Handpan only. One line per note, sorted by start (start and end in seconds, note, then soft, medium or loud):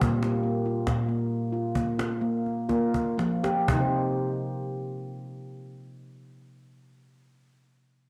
0.01 0.67 A#2 loud
0.01 0.23 A#3 medium
0.23 0.44 F4 medium
0.43 0.66 A#3 medium
0.66 1.09 F4 medium
0.87 2.28 A#2 medium
1.08 1.53 A#3 medium
1.52 1.75 F4 medium
1.75 1.99 A#3 medium
1.98 2.21 F4 medium
2.21 2.68 A#3 medium
2.69 3.07 A#3 loud
2.69 3.18 F4 medium
3.18 3.57 F3 medium
3.18 3.44 A#3 medium
3.43 3.68 G4 medium
3.68 6.67 C3 loud
3.68 6.66 C4 medium
3.73 6.71 D#4 medium
3.77 6.75 G4 medium
3.81 6.79 C5 medium